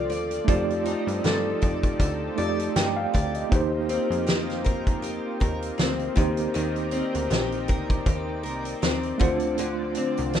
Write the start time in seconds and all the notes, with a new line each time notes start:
Already playing: C2 D3 F3 C4 F4 A4 D5
0.10 D#2 D5, closed hi-hat
0.31 closed hi-hat
0.45 F2 F3 A3 D#4 G4, kick
0.49 C4 D#4 G4 A4 D5, closed hi-hat
0.70 closed hi-hat
0.85 D#4, closed hi-hat
1.07 G2, closed hi-hat
1.24 G2 A4, snare, closed hi-hat
1.62 F2 D5, kick, closed hi-hat
1.83 kick, closed hi-hat
1.99 D2 A4, kick, closed hi-hat
2.36 F2 A3 D#4 G4 D5, closed hi-hat
2.59 closed hi-hat
2.76 G2 D#4 G5, snare, closed hi-hat
2.96 F5
3.14 D2 D5, kick, closed hi-hat
3.35 D#5, closed hi-hat
3.50 D#2 A#3 D#4 F4 G4, kick, closed hi-hat
3.55 C5
3.89 C4, closed hi-hat
4.10 F2, closed hi-hat
4.27 G4, snare, closed hi-hat
4.50 snare, closed hi-hat
4.64 A#4, kick, closed hi-hat
4.87 kick, closed hi-hat
5.02 G4, closed hi-hat
5.40 D#2 A#4, kick, closed hi-hat
5.62 closed hi-hat
5.78 D2 C4, snare, closed hi-hat
5.99 closed hi-hat
6.15 D#2 D#3 A#3 D#4 G4 A#4 D5, kick, closed hi-hat
6.19 C5
6.37 closed hi-hat
6.54 D#2 D#3, closed hi-hat
6.76 closed hi-hat
6.91 C4, closed hi-hat
7.15 D2, closed hi-hat
7.30 A#1 G4, snare, closed hi-hat
7.52 closed hi-hat
7.68 D2 A#4, kick, closed hi-hat
7.90 kick, closed hi-hat
8.06 D#2 G4, kick, closed hi-hat
8.43 C2 A#4, closed hi-hat
8.65 closed hi-hat
8.82 D#2 C4, snare, closed hi-hat
9.03 closed hi-hat
9.18 D2 D3 F3 A3 D4 F4, kick, closed hi-hat
9.23 C5
9.40 closed hi-hat
9.58 D3, closed hi-hat
9.95 C4, closed hi-hat
10.17 C2, closed hi-hat
10.33 D4, snare, closed hi-hat